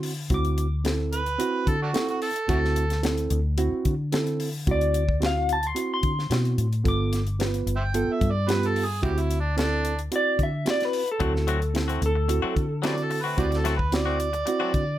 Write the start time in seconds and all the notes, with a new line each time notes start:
Already playing: D3 C4 E4 F#4 C6
0.03 open hi-hat
0.30 D2 C4 E4 F#4, kick, closed hi-hat
0.34 D6
0.45 closed hi-hat
0.58 closed hi-hat
0.84 C4 E4 A4, snare, closed hi-hat
1.13 B4, closed hi-hat
1.26 closed hi-hat
1.39 C4 E4 F#4, closed hi-hat
1.67 D3 A4, kick, closed hi-hat
1.82 A3 D4 F#4
1.93 C4 E4 A4, snare, closed hi-hat
2.09 F#4, closed hi-hat
2.22 A4, open hi-hat
2.36 closed hi-hat
2.48 D2 C4 E4 F#4 A4, kick, closed hi-hat
2.65 snare
2.76 closed hi-hat
2.90 snare, closed hi-hat
3.03 C4 E4 A4, snare, closed hi-hat
3.18 closed hi-hat
3.30 D2, closed hi-hat
3.58 C4 E4 F#4, closed hi-hat
3.72 muted fingered electric bass stroke
3.85 D3, kick, closed hi-hat
4.12 C4 E4 A4, snare, closed hi-hat
4.27 closed hi-hat
4.40 open hi-hat
4.67 D2 C4 E4 F#4, kick, closed hi-hat
4.71 D5
4.81 closed hi-hat
4.94 closed hi-hat
5.09 kick
5.20 C4 E4 F#4, snare, closed hi-hat
5.26 F5
5.49 A5, closed hi-hat
5.63 C6, closed hi-hat
5.75 C4 E4 F#4, closed hi-hat
5.94 C6
6.03 D3, kick, closed hi-hat
6.19 snare
6.30 B2 C4 E4 F#4, snare, closed hi-hat
6.45 closed hi-hat
6.58 A2, closed hi-hat
6.73 closed hi-hat
6.84 G1 B3 F4 A4, kick, closed hi-hat
6.88 D6
7.13 snare, closed hi-hat
7.27 closed hi-hat
7.39 B3 F4 B4, snare, closed hi-hat
7.54 closed hi-hat
7.66 G1, closed hi-hat
7.76 C5 E5 G5
7.94 B3 F4 A4, closed hi-hat
8.12 E5
8.21 G2, kick, closed hi-hat
8.31 D5
8.48 B3 F4 G4 B4, snare, closed hi-hat
8.63 closed hi-hat
8.67 A4
8.76 open hi-hat
8.85 G#4
9.02 D2 C4 E4 F#4 G4, kick, closed hi-hat
9.18 E4, closed hi-hat
9.31 closed hi-hat
9.40 D4
9.57 C4 D4 E4 A4, snare, closed hi-hat
9.85 closed hi-hat
9.99 closed hi-hat
10.11 C4 E4 F#4, closed hi-hat
10.16 D5
10.39 D3, kick, closed hi-hat
10.43 E5
10.65 C4 E4 F#4, snare, closed hi-hat
10.70 D5
10.80 snare, closed hi-hat
10.85 B4
10.93 open hi-hat
11.08 A4, closed hi-hat
11.20 D2 F#3 A3 C4 E4 F#4, kick, closed hi-hat
11.34 muted clean electric guitar stroke, snare
11.47 F#3 A3 C4 F#4, closed hi-hat
11.61 muted clean electric guitar stroke, closed hi-hat
11.74 C4 E4 A4, snare, closed hi-hat
11.88 A3 C4 F#4, closed hi-hat
12.01 D2, muted clean electric guitar stroke, closed hi-hat
12.06 A4
12.15 muted clean electric guitar stroke
12.28 C4 E4 F#4, muted clean electric guitar stroke, closed hi-hat
12.42 F#3 A3 C4 F#4
12.56 D3, muted clean electric guitar stroke, kick, closed hi-hat
12.82 F#3 A3 C4 E4 F#4 G4 B4 D5, snare, closed hi-hat
12.97 muted clean electric guitar stroke, closed hi-hat
13.03 A4
13.10 muted clean electric guitar stroke, open hi-hat
13.21 C4 F#4 B4
13.26 A3
13.37 D2 C4 E4 F#4 G4 B4 D5, kick, closed hi-hat
13.51 muted clean electric guitar stroke, snare, closed hi-hat
13.58 A4
13.64 F#3 A3 C4 F#4, snare, closed hi-hat
13.76 B4, muted clean electric guitar stroke, kick
13.92 C4 E4 F#4 D5, snare, closed hi-hat
14.05 A3 C4 F#4
14.19 muted clean electric guitar stroke, closed hi-hat
14.33 muted clean electric guitar stroke, closed hi-hat
14.46 C4 E4 F#4, muted clean electric guitar stroke, closed hi-hat
14.60 F#3 A3 C4 F#4
14.73 D3, muted clean electric guitar stroke, kick, closed hi-hat